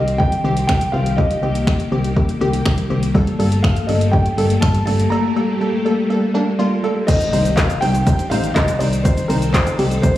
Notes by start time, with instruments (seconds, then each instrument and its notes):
Already playing: fm bass C2, synth stab D#3 C4 G4, string machine D#3 C4 G4, grand piano D#5
0.08 closed hi-hat
0.18 synth stab D#3 C4 G4, grand piano G5, kick
0.32 closed hi-hat
0.44 fm bass C2, synth stab D#3 C4 G4
0.57 closed hi-hat
0.67 fm bass C2, synth stab D#3 C4 G4, grand piano G5, finger snap, kick
0.81 closed hi-hat
0.92 fm bass C2, synth stab D#3 C4 F4, grand piano F5
1.06 closed hi-hat
1.17 synth stab D#3 C4 G4, string machine A#3, grand piano D#5, kick
1.31 closed hi-hat
1.42 fm bass C2, synth stab D#3 C4 G4
1.55 closed hi-hat
1.67 synth stab D#3 C4 G4, finger snap, kick
1.80 closed hi-hat
1.92 fm bass C2, synth stab D#3 C4 G4
2.04 closed hi-hat
2.16 synth stab D#3 C4 G4, kick
2.29 closed hi-hat
2.41 fm bass C2, synth stab D#3 C4 G4
2.53 closed hi-hat
2.65 fm bass C2, synth stab D#3 C4 G4, finger snap, kick
2.78 closed hi-hat
2.90 fm bass C2, synth stab D#3 C4 G4
3.03 closed hi-hat
3.14 synth stab G3 A#3 A4, string machine G3 A3, kick
3.27 closed hi-hat
3.39 fm bass G1, synth stab G3 A#3 A4, open hi-hat
3.52 closed hi-hat
3.63 synth stab G3 A#3 A4, grand piano F5, finger snap, kick
3.77 closed hi-hat
3.87 fm bass G1, synth stab G3 A#3 A4, grand piano D#5, open hi-hat
4.01 closed hi-hat
4.12 synth stab G3 A#3 G4, grand piano G5, kick
4.26 closed hi-hat
4.38 fm bass G1, synth stab G3 A#3 A4, open hi-hat
4.50 closed hi-hat
4.61 fm bass G1, synth stab G3 A#3 A4, grand piano A5, finger snap, kick
4.75 closed hi-hat
4.86 fm bass G1, synth stab G3 A#3 A4, grand piano A5, open hi-hat
5.00 closed hi-hat
5.10 synth stab G3 A#3 A4, grand piano A#5
5.36 synth stab G3 A#3 A4
5.61 synth stab G3 A#3 A4
5.85 synth stab G3 A#3 A4
6.10 synth stab G3 A#3 A4
6.34 synth stab G3 A#3 D4
6.59 synth stab G3 A#3 F4
6.84 synth stab G3 A#3 A4
7.07 string machine D#3 C4 G4, synth stab G3 C4 D#4 C5, grand piano D#5, kick, closed hi-hat, crash, impact, shaker
7.20 closed hi-hat, shaker
7.33 fm bass C2, synth stab G3 C4 D#4 C5, open hi-hat, shaker
7.45 closed hi-hat, shaker
7.56 synth stab G3 C4 D#4 C5, grand piano F5, kick, snare, clap, closed hi-hat, shaker
7.70 closed hi-hat, shaker
7.81 fm bass C2, synth stab G3 C4 D#4 C5, grand piano G5, open hi-hat, shaker
7.94 closed hi-hat, shaker
8.06 synth stab G3 C4 D#4 C5, kick, closed hi-hat, shaker
8.19 closed hi-hat, shaker
8.30 fm bass A1, synth stab G3 C4 D#4 C5, grand piano F5, open hi-hat, shaker
8.44 closed hi-hat, shaker
8.55 fm bass C2, synth stab G3 C4 D#4 D5, grand piano D#5, kick, snare, clap, closed hi-hat, shaker
8.68 closed hi-hat, shaker
8.79 fm bass C2, synth stab G3 C4 D#4 C5, grand piano D5, open hi-hat, shaker
8.93 closed hi-hat, shaker
9.04 synth stab G3 C4 D#4 C5, string machine A4, grand piano C5, kick, closed hi-hat, shaker
9.17 closed hi-hat, shaker
9.28 fm bass C2, synth stab G3 C4 D#4 C5, grand piano A#4, open hi-hat, shaker
9.42 closed hi-hat, shaker
9.53 synth stab G3 C4 D#4 D5, grand piano C5, kick, snare, clap, closed hi-hat, shaker
9.67 closed hi-hat, shaker
9.79 fm bass C2, synth stab G3 C4 D#4 G4, open hi-hat, shaker
9.91 closed hi-hat, shaker
10.02 synth stab G3 C4 D#4 C5, grand piano C5, kick, closed hi-hat, shaker